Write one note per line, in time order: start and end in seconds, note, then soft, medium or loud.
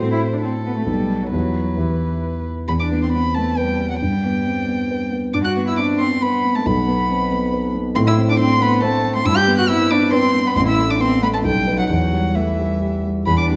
0.00 0.85 A2 soft
0.00 0.10 C4 medium
0.00 0.85 C4 soft
0.00 0.85 F#4 soft
0.00 0.85 A4 soft
0.00 0.41 C5 medium
0.12 0.20 E4 medium
0.33 0.37 D4 soft
0.42 0.52 C4 medium
0.42 1.31 A4 medium
0.66 0.77 B3 soft
0.77 0.88 A3 soft
0.86 1.31 B1 soft
0.86 1.24 G3 medium
0.86 1.30 B3 soft
0.86 1.31 D#4 soft
0.86 1.31 A4 soft
1.22 1.33 F#3 soft
1.31 1.75 E2 soft
1.31 1.80 F#3 soft
1.31 1.75 B3 soft
1.31 1.75 E4 soft
1.31 1.76 G4 soft
1.31 2.43 B4 soft
1.76 2.65 E2 soft
1.76 2.46 E3 soft
1.76 2.65 B3 soft
1.76 2.66 E4 soft
1.76 2.66 G4 soft
2.68 3.97 E2 soft
2.68 2.74 B3 medium
2.68 2.73 B5 medium
2.80 3.03 D4 medium
2.80 2.88 D6 medium
2.92 3.27 B3 soft
3.02 3.08 C4 soft
3.02 3.11 C6 soft
3.12 3.23 B3 medium
3.12 3.36 C4 soft
3.12 3.36 B5 medium
3.34 3.58 A3 medium
3.34 3.71 B3 soft
3.34 3.59 A5 medium
3.58 3.93 G3 medium
3.58 3.93 B4 soft
3.58 3.90 G5 medium
3.80 4.02 B3 soft
3.90 4.02 F#3 soft
3.90 4.00 F#5 medium
4.01 5.30 G2 soft
4.01 5.10 G3 medium
4.01 5.09 G5 medium
4.25 4.60 B3 soft
4.47 4.68 C4 soft
4.68 5.03 B3 soft
4.91 5.25 B4 soft
5.12 5.34 B3 soft
5.33 6.62 G2 medium
5.33 5.44 D4 medium
5.33 5.38 D6 medium
5.44 5.67 F#4 medium
5.44 5.52 F#6 medium
5.56 5.91 B3 soft
5.67 5.80 E4 medium
5.67 5.77 E6 medium
5.77 6.00 C4 soft
5.77 6.02 D4 medium
5.77 5.85 D6 medium
5.99 6.35 B3 soft
5.99 6.24 C4 medium
5.99 6.23 C6 medium
6.22 6.54 B3 medium
6.22 6.57 B4 medium
6.22 6.57 B5 medium
6.45 6.66 B3 soft
6.55 6.59 A3 medium
6.55 6.68 A5 medium
6.66 7.92 B1 medium
6.66 7.72 B3 medium
6.66 7.74 B5 medium
6.88 7.22 B3 soft
7.10 7.31 C4 soft
7.32 7.66 B3 soft
7.53 7.87 B4 medium
7.75 7.96 B3 soft
7.95 9.22 A2 medium
7.95 7.99 C4 medium
7.95 8.00 C6 medium
8.06 8.14 E4 medium
8.06 8.15 E6 medium
8.18 8.52 C4 soft
8.28 8.37 D4 medium
8.28 8.39 D6 medium
8.38 8.59 C4 medium
8.38 8.61 D4 soft
8.38 8.64 C6 loud
8.60 8.84 B3 medium
8.60 8.95 C4 medium
8.60 8.83 B5 medium
8.82 9.17 A3 medium
8.82 9.17 C5 medium
8.82 9.15 A5 medium
9.04 9.26 C4 soft
9.15 9.25 C4 medium
9.15 9.27 C6 medium
9.25 10.52 G2 medium
9.25 9.38 E4 medium
9.25 9.38 E6 loud
9.37 9.58 G4 medium
9.37 9.58 G6 loud
9.48 9.82 B3 medium
9.58 9.63 F#4 medium
9.58 9.70 F#6 medium
9.68 9.91 C4 soft
9.68 9.93 E4 medium
9.68 9.92 E6 loud
9.91 10.26 B3 medium
9.91 10.14 D4 medium
9.91 10.12 D6 medium
10.12 10.46 C4 medium
10.12 10.47 B4 medium
10.12 10.48 C6 loud
10.34 10.56 B3 soft
10.46 10.50 B3 medium
10.46 10.56 B5 medium
10.56 11.42 A1 medium
10.56 10.67 C4 medium
10.56 10.61 C6 medium
10.67 10.88 E4 medium
10.67 10.92 E6 medium
10.78 11.13 A3 soft
10.89 10.99 D4 medium
10.89 11.02 D6 medium
11.00 11.22 B3 soft
11.00 11.22 C4 medium
11.00 11.23 C6 medium
11.22 11.45 A3 soft
11.22 11.27 B3 medium
11.22 11.27 B5 medium
11.34 11.44 A3 medium
11.34 11.38 A5 medium
11.44 11.89 B1 medium
11.44 11.77 G3 medium
11.44 11.78 G5 medium
11.67 11.88 D#4 soft
11.67 11.88 B4 soft
11.78 11.83 F#3 medium
11.78 11.89 F#5 medium
11.90 13.23 E2 medium
11.90 12.37 F#3 medium
11.90 12.37 F#5 medium
12.13 12.50 G3 soft
12.35 13.05 E3 medium
12.35 12.59 A3 soft
12.35 13.04 E5 medium
12.58 12.95 G3 soft
12.81 13.18 G4 soft
13.04 13.27 G3 soft
13.26 13.56 E2 medium
13.26 13.38 B3 medium
13.26 13.37 B5 medium
13.38 13.56 D4 medium
13.38 13.46 D6 medium
13.49 13.56 G3 soft